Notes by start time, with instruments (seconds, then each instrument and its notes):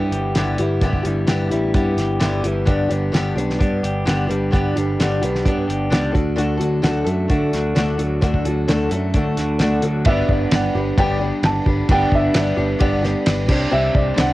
Already playing: clean electric guitar G2 D3 E3 G3 G4, steel-string acoustic guitar G3 B3 E4 G4
0.11 picked electric bass G1, clean electric guitar G4, closed hi-hat
0.35 picked electric bass G1, steel-string acoustic guitar G2 D3 G3 B3 E4 G4, snare, closed hi-hat
0.57 picked electric bass G1, clean electric guitar E3, steel-string acoustic guitar E4 G4, closed hi-hat
0.62 steel-string acoustic guitar G3 B3
0.81 picked electric bass G1, steel-string acoustic guitar G2 D3 G3 B3 E4 G4, kick, closed hi-hat
0.93 kick
1.03 picked electric bass G1, clean electric guitar D3, steel-string acoustic guitar G3 B3 E4 G4, closed hi-hat
1.27 picked electric bass G1, steel-string acoustic guitar G2 D3 G3 B3 E4 G4, clean electric guitar E3, snare, closed hi-hat
1.49 picked electric bass A1, steel-string acoustic guitar G3 B3 E4 G4, closed hi-hat
1.74 picked electric bass G2, steel-string acoustic guitar G3 B3 E4 G4, kick, closed hi-hat
1.97 picked electric bass G1, clean electric guitar G4, snare, closed hi-hat
2.20 picked electric bass G1, steel-string acoustic guitar G2 D3 G3 B3 E4 G4, snare, closed hi-hat
2.43 picked electric bass G1, clean electric guitar E3, steel-string acoustic guitar G3 B3 E4 G4, closed hi-hat
2.65 picked electric bass G1, steel-string acoustic guitar G2 D3 G3 B3 D4 G4, kick, closed hi-hat
2.89 picked electric bass G1, clean electric guitar D3, steel-string acoustic guitar G3 B3 D4 G4, closed hi-hat
3.12 picked electric bass G1, steel-string acoustic guitar G2 D3 G3 B3 D4 G4, snare, closed hi-hat
3.35 picked electric bass B1, steel-string acoustic guitar G3 B3 D4 G4, closed hi-hat
3.50 snare
3.58 picked electric bass G2, steel-string acoustic guitar G3 B3 D4 G4, kick, closed hi-hat
3.83 picked electric bass G1, clean electric guitar G4, closed hi-hat
4.05 picked electric bass G1, steel-string acoustic guitar G2 D3 G3 B3 D4 G4, snare, closed hi-hat
4.27 picked electric bass G1, steel-string acoustic guitar G3 B3 D4 G4, closed hi-hat
4.51 picked electric bass G1, steel-string acoustic guitar G2 D3 G3 B3 D4 G4, kick, closed hi-hat
4.76 picked electric bass G1, clean electric guitar D3, steel-string acoustic guitar G3 B3 D4 G4, closed hi-hat
5.00 picked electric bass G1, steel-string acoustic guitar G2 D3 G3 B3 D4 G4, snare, closed hi-hat
5.22 picked electric bass B1, steel-string acoustic guitar G3 B3 D4 G4, closed hi-hat
5.35 snare
5.45 picked electric bass G2, steel-string acoustic guitar G3 B3 D4 G4, kick, closed hi-hat
5.68 picked electric bass G1, clean electric guitar G4, closed hi-hat
5.90 picked electric bass C#2, steel-string acoustic guitar G2 D3 G3 B3 D4 G4, snare, closed hi-hat
6.12 picked electric bass D2, clean electric guitar D3, steel-string acoustic guitar D4 F#4 A4, kick, closed hi-hat
6.36 picked electric bass D2, steel-string acoustic guitar D3 A3 D4 F#4 A4, closed hi-hat
6.57 picked electric bass D2, clean electric guitar F#3, steel-string acoustic guitar D4 F#4 A4, closed hi-hat
6.82 picked electric bass D2, steel-string acoustic guitar D3 A3 D4 F#4 A4, clean electric guitar F#3, snare, closed hi-hat
7.05 picked electric bass F#2, clean electric guitar A3, steel-string acoustic guitar D4 F#4 A4, closed hi-hat
7.28 picked electric bass D3, steel-string acoustic guitar A3 D4 F#4 A4, kick, closed hi-hat
7.53 picked electric bass D2, clean electric guitar F#4, snare, closed hi-hat
7.75 picked electric bass D2, steel-string acoustic guitar D3 A3 D4 F#4 A4, snare, closed hi-hat
7.98 picked electric bass D2, clean electric guitar F#3, steel-string acoustic guitar D4 F#4 A4, closed hi-hat
8.21 picked electric bass D2, steel-string acoustic guitar D3 A3 D4 F#4 A4, kick, closed hi-hat
8.34 kick
8.45 picked electric bass D2, clean electric guitar F#3, steel-string acoustic guitar D4 F#4 A4, closed hi-hat
8.68 picked electric bass D2, steel-string acoustic guitar D3 A3 D4 F#4 A4, clean electric guitar F#3, snare, closed hi-hat
8.90 picked electric bass F#2, clean electric guitar A3, steel-string acoustic guitar F#4 A4, closed hi-hat
8.94 steel-string acoustic guitar D4
9.14 picked electric bass D3, steel-string acoustic guitar A3 D4 F#4 A4, kick, closed hi-hat
9.37 picked electric bass D2, clean electric guitar F#4, snare, closed hi-hat
9.59 picked electric bass D2, steel-string acoustic guitar D3 A3 D4 F#4 A4, snare, closed hi-hat
9.82 picked electric bass D2, clean electric guitar F#3, steel-string acoustic guitar D4 F#4 A4, closed hi-hat
10.05 picked electric bass G1, steel-string acoustic guitar G2 D3 G3 B3 D4 G4, harmonium G4 D5 B5, grand piano E5, kick, ride bell
10.29 picked electric bass G1, grand piano D5, kick
10.51 picked electric bass G1, steel-string acoustic guitar G3 B3 D4 G4, grand piano F#5, snare, ride bell
10.75 picked electric bass G1, steel-string acoustic guitar G3 B3 D4 G4
10.97 picked electric bass G1, steel-string acoustic guitar G2 D3 G3 B3 D4 G4, grand piano G5, kick, ride bell
11.20 steel-string acoustic guitar G3 B3 D4 G4
11.43 picked electric bass G1, grand piano A5, snare, ride bell
11.66 picked electric bass G1, steel-string acoustic guitar G3 B3 D4 G4, kick
11.89 picked electric bass G1, steel-string acoustic guitar G2 D3 G3 B3 D4 G4, grand piano G5, kick, ride bell
12.12 picked electric bass G1, grand piano E5, kick
12.34 picked electric bass G1, steel-string acoustic guitar G3 B3 D4 G4, snare, ride bell
12.57 picked electric bass G1, steel-string acoustic guitar G3 B3 D4 G4
12.79 picked electric bass G1, steel-string acoustic guitar G2 D3 G3 B3 D4 G4, grand piano D5, kick, ride bell
13.02 steel-string acoustic guitar G3 B3 D4 G4, snare
13.26 picked electric bass G1, snare, ride bell
13.48 picked electric bass C2, clean electric guitar C3 G3, steel-string acoustic guitar C4 D4 G4, harmonium C6, kick, crash
13.71 picked electric bass C2, steel-string acoustic guitar C3 G3 C4 D4 G4, grand piano E5
13.95 picked electric bass C2, grand piano D5, kick
14.14 picked electric bass C2, steel-string acoustic guitar G3 C4 D4 G4, ride bell
14.18 grand piano F#5, snare